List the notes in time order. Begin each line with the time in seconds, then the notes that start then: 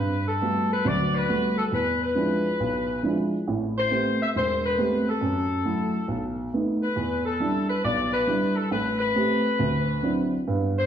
Already playing: G2 B4
0.28 A4
0.42 G3 A3 B3 F#4
0.72 B4
0.85 D2 F#3 D5
1.14 B4
1.29 G3 A3 B3 F#4
1.58 A4
1.72 E2 B4
2.02 B4
2.15 F3 G#3 D4 E4
2.60 B1
3.03 F3 G#3 D4 E4
3.48 A1 A2
3.78 C5
3.91 A3 B3 C4 G4
4.22 E5
4.35 E1 C5
4.66 B4
4.78 A3 B3 C4 G4
5.09 A4
5.21 F#2
5.65 F#3 A3 E4
6.08 B1
6.54 A3 B3 D#4
6.82 B4
6.96 E2
7.25 A4
7.40 G3 D4 E4
7.69 B4
7.84 B1 D5
8.12 B4
8.27 G3 D4 E4
8.56 A4
8.71 A1 B4
8.99 B4
9.15 A3 C4 G4
9.59 D2
10.03 F#3 C4 D4 E4
10.48 G2 B3
10.79 C5